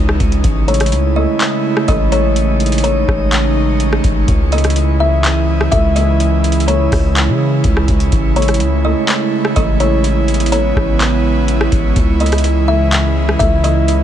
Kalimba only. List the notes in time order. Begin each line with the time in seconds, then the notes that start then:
Already playing: C#5
0.68 C#5
1.16 D#5
1.88 D#5
2.12 C#5
2.84 C#5
4.52 D#5
5.00 E5
5.72 E5
5.96 D#5
6.68 C#5
8.36 C#5
8.85 D#5
9.56 D#5
9.80 C#5
10.52 C#5
12.21 D#5
12.68 E5
13.39 E5
13.64 D#5